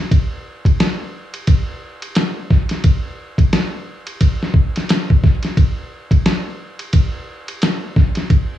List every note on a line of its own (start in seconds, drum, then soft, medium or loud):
0.11 kick loud
0.11 ride medium
0.65 kick medium
0.65 ride medium
0.80 snare loud
0.80 hi-hat pedal medium
0.80 ride medium
1.34 ride medium
1.47 kick loud
1.47 ride medium
2.02 ride medium
2.15 snare loud
2.15 hi-hat pedal soft
2.15 ride medium
2.51 kick loud
2.51 snare soft
2.69 snare soft
2.69 ride medium
2.84 kick loud
2.84 ride medium
3.38 kick medium
3.38 ride soft
3.53 snare loud
3.53 hi-hat pedal medium
3.53 ride medium
4.07 ride medium
4.21 kick medium
4.21 ride medium
4.43 snare soft
4.54 kick loud
4.76 snare soft
4.76 ride medium
4.89 snare medium
4.89 hi-hat pedal medium
4.89 ride medium
5.10 kick loud
5.24 kick loud
5.24 snare soft
5.43 snare soft
5.43 ride soft
5.57 kick loud
5.57 ride medium
6.11 kick medium
6.11 ride medium
6.26 snare loud
6.26 hi-hat pedal medium
6.26 ride medium
6.79 ride medium
6.93 kick medium
6.93 ride medium
7.48 ride medium
7.62 snare medium
7.62 hi-hat pedal soft
7.62 ride medium
7.96 kick loud
7.96 snare soft
8.15 snare soft
8.15 ride soft
8.30 kick loud
8.30 ride medium